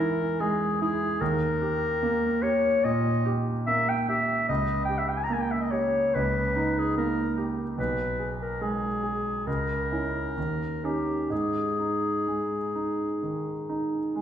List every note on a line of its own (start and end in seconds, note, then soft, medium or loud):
0.00 0.24 E3 medium
0.00 0.40 G#3 medium
0.00 0.82 E4 medium
0.00 0.42 A#4 medium
0.40 1.05 G#3 medium
0.40 0.81 G#4 medium
0.82 1.21 E4 medium
0.82 1.22 G#4 medium
1.21 2.80 D#2 medium
1.21 2.44 A#4 medium
1.62 2.27 G4 soft
2.03 2.67 A#3 medium
2.43 3.08 G4 soft
2.43 2.86 C#5 medium
2.84 3.51 A#2 medium
2.84 3.40 D#5 medium
3.25 3.92 G4 medium
3.67 4.33 A#3 soft
3.67 3.90 E5 medium
3.89 4.09 G5 medium
4.09 4.49 G4 soft
4.09 4.48 E5 medium
4.49 6.11 C#2 medium
4.49 4.84 D#5 medium
4.85 5.00 G5 medium
4.89 5.55 G4 soft
4.98 5.10 E5 medium
5.09 5.19 G5 medium
5.17 5.26 G#5 medium
5.24 5.35 A#5 medium
5.30 5.98 A#3 soft
5.30 5.43 G#5 medium
5.41 5.53 G5 medium
5.51 5.63 E5 soft
5.61 5.73 D#5 medium
5.71 6.40 G4 soft
5.71 6.16 C#5 medium
6.15 7.74 C#2 medium
6.15 6.80 B4 medium
6.56 7.21 D#4 soft
6.79 6.97 G#4 medium
6.97 7.62 A#3 soft
6.97 7.37 A#4 medium
7.38 7.78 G4 soft
7.78 9.43 B1 soft
7.78 8.36 B4 medium
8.19 8.86 G#4 soft
8.42 8.63 A#4 medium
8.61 9.29 G#3 soft
8.61 9.48 G#4 medium
9.03 9.47 G#4 soft
9.47 10.34 C#2 soft
9.47 10.86 A#4 medium
9.92 10.33 C#4 soft
9.92 10.33 E4 soft
10.37 11.29 D#2 soft
10.84 11.27 C#4 soft
10.84 11.28 D#4 soft
10.84 11.33 G4 soft
11.30 13.19 G#2 soft
11.30 14.22 G#4 soft
11.79 12.56 D#4 soft
12.27 13.04 G#3 soft
12.75 13.51 D#4 soft
13.23 13.98 D#3 soft
13.69 14.22 D#4 soft
14.16 14.22 G#3 soft